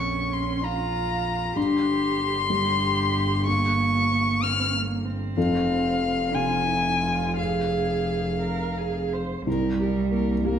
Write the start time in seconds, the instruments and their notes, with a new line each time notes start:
Already playing: double bass A#1, felt piano F2, cello C#4, violin C#6
0.33 violin C6
0.64 cello F4, violin A#5
1.56 double bass G1, felt piano G2, cello G4, violin C6
2.50 felt piano G3, cello G4
3.46 cello A#3, violin C#6
4.43 cello C4, violin F6
4.73 cello A#3
5.05 cello C4
5.36 double bass F1, felt piano F2, violin F5
6.34 felt piano C3, cello F4, violin G#5
6.68 cello E4
7.01 cello F4
7.37 cello G#4, violin F5
8.42 cello A#4
8.78 cello G#4
9.13 cello C5
9.46 felt piano C2, double bass C2, cello G3, violin A#4
9.80 felt piano G4, violin A#4
10.11 felt piano A#3, violin A#4
10.44 cello A#3, felt piano G4, violin A#4